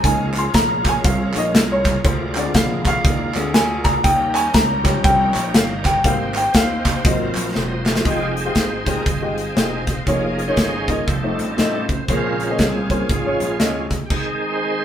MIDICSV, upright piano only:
0, 0, Header, 1, 2, 480
1, 0, Start_track
1, 0, Tempo, 502513
1, 39, Time_signature, 4, 2, 24, 8
1, 14182, End_track
2, 0, Start_track
2, 0, Title_t, "Upright piano"
2, 0, Program_c, 0, 0
2, 41, Note_on_c, 0, 53, 54
2, 46, Note_on_c, 0, 58, 44
2, 46, Note_on_c, 0, 80, 95
2, 53, Note_on_c, 0, 63, 59
2, 367, Note_on_c, 0, 84, 90
2, 371, Note_off_c, 0, 80, 0
2, 390, Note_off_c, 0, 53, 0
2, 393, Note_off_c, 0, 58, 0
2, 396, Note_off_c, 0, 63, 0
2, 524, Note_on_c, 0, 82, 110
2, 527, Note_off_c, 0, 84, 0
2, 849, Note_off_c, 0, 82, 0
2, 850, Note_on_c, 0, 80, 97
2, 897, Note_off_c, 0, 80, 0
2, 1001, Note_on_c, 0, 77, 88
2, 1295, Note_off_c, 0, 77, 0
2, 1297, Note_on_c, 0, 53, 49
2, 1301, Note_on_c, 0, 58, 42
2, 1305, Note_on_c, 0, 63, 51
2, 1309, Note_on_c, 0, 77, 66
2, 1320, Note_on_c, 0, 75, 89
2, 1328, Note_off_c, 0, 77, 0
2, 1460, Note_off_c, 0, 53, 0
2, 1462, Note_off_c, 0, 58, 0
2, 1465, Note_off_c, 0, 63, 0
2, 1642, Note_on_c, 0, 73, 86
2, 1646, Note_off_c, 0, 75, 0
2, 1957, Note_on_c, 0, 72, 85
2, 1967, Note_off_c, 0, 73, 0
2, 2242, Note_on_c, 0, 50, 55
2, 2248, Note_on_c, 0, 56, 49
2, 2256, Note_on_c, 0, 60, 59
2, 2277, Note_on_c, 0, 74, 85
2, 2283, Note_off_c, 0, 72, 0
2, 2433, Note_on_c, 0, 77, 92
2, 2439, Note_off_c, 0, 74, 0
2, 2730, Note_off_c, 0, 77, 0
2, 2744, Note_on_c, 0, 77, 111
2, 3185, Note_off_c, 0, 50, 0
2, 3192, Note_off_c, 0, 56, 0
2, 3192, Note_off_c, 0, 77, 0
2, 3194, Note_off_c, 0, 60, 0
2, 3199, Note_on_c, 0, 50, 50
2, 3206, Note_on_c, 0, 56, 46
2, 3209, Note_on_c, 0, 60, 50
2, 3367, Note_off_c, 0, 50, 0
2, 3371, Note_off_c, 0, 56, 0
2, 3372, Note_off_c, 0, 60, 0
2, 3384, Note_on_c, 0, 80, 92
2, 3671, Note_on_c, 0, 82, 94
2, 3689, Note_off_c, 0, 80, 0
2, 3856, Note_on_c, 0, 79, 96
2, 3866, Note_off_c, 0, 82, 0
2, 4149, Note_on_c, 0, 80, 97
2, 4164, Note_off_c, 0, 79, 0
2, 4325, Note_off_c, 0, 80, 0
2, 4338, Note_on_c, 0, 82, 101
2, 4620, Note_on_c, 0, 53, 62
2, 4628, Note_on_c, 0, 55, 58
2, 4631, Note_on_c, 0, 61, 63
2, 4819, Note_on_c, 0, 79, 95
2, 4833, Note_off_c, 0, 82, 0
2, 5257, Note_off_c, 0, 53, 0
2, 5261, Note_off_c, 0, 55, 0
2, 5263, Note_off_c, 0, 61, 0
2, 5303, Note_on_c, 0, 77, 85
2, 5313, Note_off_c, 0, 79, 0
2, 5594, Note_on_c, 0, 79, 95
2, 5604, Note_off_c, 0, 77, 0
2, 5770, Note_on_c, 0, 55, 57
2, 5777, Note_on_c, 0, 58, 50
2, 5780, Note_on_c, 0, 60, 60
2, 5784, Note_off_c, 0, 79, 0
2, 5785, Note_on_c, 0, 77, 86
2, 6082, Note_on_c, 0, 79, 85
2, 6085, Note_off_c, 0, 77, 0
2, 6123, Note_off_c, 0, 55, 0
2, 6127, Note_off_c, 0, 58, 0
2, 6129, Note_off_c, 0, 60, 0
2, 6249, Note_off_c, 0, 79, 0
2, 6265, Note_on_c, 0, 77, 100
2, 6706, Note_off_c, 0, 77, 0
2, 6730, Note_on_c, 0, 54, 60
2, 6735, Note_on_c, 0, 58, 51
2, 6738, Note_on_c, 0, 60, 51
2, 6739, Note_on_c, 0, 65, 65
2, 6746, Note_on_c, 0, 75, 70
2, 7015, Note_off_c, 0, 75, 0
2, 7469, Note_off_c, 0, 54, 0
2, 7471, Note_off_c, 0, 58, 0
2, 7473, Note_off_c, 0, 60, 0
2, 7473, Note_off_c, 0, 65, 0
2, 7689, Note_on_c, 0, 56, 61
2, 7693, Note_on_c, 0, 65, 57
2, 7696, Note_on_c, 0, 67, 56
2, 7701, Note_on_c, 0, 75, 67
2, 7942, Note_off_c, 0, 56, 0
2, 7943, Note_off_c, 0, 65, 0
2, 7945, Note_off_c, 0, 67, 0
2, 7948, Note_off_c, 0, 75, 0
2, 8072, Note_on_c, 0, 56, 63
2, 8074, Note_on_c, 0, 65, 62
2, 8082, Note_on_c, 0, 67, 61
2, 8082, Note_on_c, 0, 77, 71
2, 8272, Note_off_c, 0, 56, 0
2, 8273, Note_off_c, 0, 65, 0
2, 8277, Note_off_c, 0, 67, 0
2, 8277, Note_off_c, 0, 77, 0
2, 8465, Note_on_c, 0, 56, 69
2, 8470, Note_on_c, 0, 65, 65
2, 8473, Note_on_c, 0, 67, 63
2, 8479, Note_on_c, 0, 72, 69
2, 8624, Note_off_c, 0, 56, 0
2, 8626, Note_off_c, 0, 65, 0
2, 8628, Note_off_c, 0, 67, 0
2, 8631, Note_off_c, 0, 72, 0
2, 8802, Note_on_c, 0, 65, 59
2, 8803, Note_on_c, 0, 56, 64
2, 8809, Note_on_c, 0, 67, 59
2, 8810, Note_on_c, 0, 75, 69
2, 9015, Note_off_c, 0, 56, 0
2, 9015, Note_off_c, 0, 65, 0
2, 9018, Note_off_c, 0, 67, 0
2, 9019, Note_off_c, 0, 75, 0
2, 9126, Note_on_c, 0, 56, 63
2, 9128, Note_on_c, 0, 65, 55
2, 9132, Note_on_c, 0, 67, 57
2, 9137, Note_on_c, 0, 72, 67
2, 9451, Note_off_c, 0, 56, 0
2, 9453, Note_off_c, 0, 65, 0
2, 9454, Note_off_c, 0, 67, 0
2, 9457, Note_off_c, 0, 72, 0
2, 9614, Note_on_c, 0, 58, 59
2, 9617, Note_on_c, 0, 63, 55
2, 9621, Note_on_c, 0, 65, 51
2, 9625, Note_on_c, 0, 73, 72
2, 9867, Note_off_c, 0, 58, 0
2, 9868, Note_off_c, 0, 63, 0
2, 9870, Note_off_c, 0, 65, 0
2, 9872, Note_off_c, 0, 73, 0
2, 10001, Note_on_c, 0, 58, 62
2, 10007, Note_on_c, 0, 63, 56
2, 10011, Note_on_c, 0, 65, 58
2, 10013, Note_on_c, 0, 73, 75
2, 10200, Note_off_c, 0, 58, 0
2, 10203, Note_off_c, 0, 63, 0
2, 10204, Note_off_c, 0, 65, 0
2, 10206, Note_off_c, 0, 73, 0
2, 10395, Note_on_c, 0, 58, 67
2, 10397, Note_on_c, 0, 63, 65
2, 10401, Note_on_c, 0, 65, 61
2, 10408, Note_on_c, 0, 75, 81
2, 10553, Note_off_c, 0, 58, 0
2, 10554, Note_off_c, 0, 63, 0
2, 10556, Note_off_c, 0, 65, 0
2, 10559, Note_off_c, 0, 75, 0
2, 10729, Note_on_c, 0, 57, 66
2, 10732, Note_on_c, 0, 63, 60
2, 10734, Note_on_c, 0, 65, 61
2, 10738, Note_on_c, 0, 72, 67
2, 10942, Note_off_c, 0, 57, 0
2, 10944, Note_off_c, 0, 63, 0
2, 10945, Note_off_c, 0, 65, 0
2, 10947, Note_off_c, 0, 72, 0
2, 11064, Note_on_c, 0, 57, 63
2, 11066, Note_on_c, 0, 63, 62
2, 11068, Note_on_c, 0, 65, 57
2, 11074, Note_on_c, 0, 75, 68
2, 11385, Note_off_c, 0, 57, 0
2, 11385, Note_off_c, 0, 63, 0
2, 11387, Note_off_c, 0, 65, 0
2, 11390, Note_off_c, 0, 75, 0
2, 11545, Note_on_c, 0, 58, 60
2, 11548, Note_on_c, 0, 61, 59
2, 11551, Note_on_c, 0, 46, 56
2, 11554, Note_on_c, 0, 72, 68
2, 11555, Note_on_c, 0, 68, 54
2, 11797, Note_off_c, 0, 58, 0
2, 11798, Note_off_c, 0, 61, 0
2, 11801, Note_off_c, 0, 72, 0
2, 11802, Note_off_c, 0, 68, 0
2, 11938, Note_on_c, 0, 58, 63
2, 11942, Note_on_c, 0, 61, 55
2, 11945, Note_on_c, 0, 68, 62
2, 11948, Note_on_c, 0, 75, 75
2, 12132, Note_off_c, 0, 58, 0
2, 12134, Note_off_c, 0, 61, 0
2, 12136, Note_off_c, 0, 68, 0
2, 12138, Note_off_c, 0, 75, 0
2, 12289, Note_off_c, 0, 46, 0
2, 12322, Note_on_c, 0, 58, 70
2, 12323, Note_on_c, 0, 61, 63
2, 12324, Note_on_c, 0, 68, 63
2, 12329, Note_on_c, 0, 72, 78
2, 12481, Note_off_c, 0, 58, 0
2, 12481, Note_off_c, 0, 61, 0
2, 12481, Note_off_c, 0, 68, 0
2, 12484, Note_off_c, 0, 72, 0
2, 12514, Note_on_c, 0, 44, 52
2, 12652, Note_on_c, 0, 56, 64
2, 12660, Note_on_c, 0, 61, 61
2, 12662, Note_on_c, 0, 65, 58
2, 12667, Note_on_c, 0, 73, 75
2, 12868, Note_off_c, 0, 56, 0
2, 12872, Note_off_c, 0, 61, 0
2, 12873, Note_off_c, 0, 65, 0
2, 12876, Note_off_c, 0, 73, 0
2, 12987, Note_on_c, 0, 56, 73
2, 12991, Note_on_c, 0, 61, 63
2, 12992, Note_on_c, 0, 65, 64
2, 12996, Note_on_c, 0, 75, 78
2, 13253, Note_off_c, 0, 44, 0
2, 13310, Note_off_c, 0, 56, 0
2, 13312, Note_off_c, 0, 61, 0
2, 13312, Note_off_c, 0, 65, 0
2, 13315, Note_off_c, 0, 75, 0
2, 14182, End_track
0, 0, End_of_file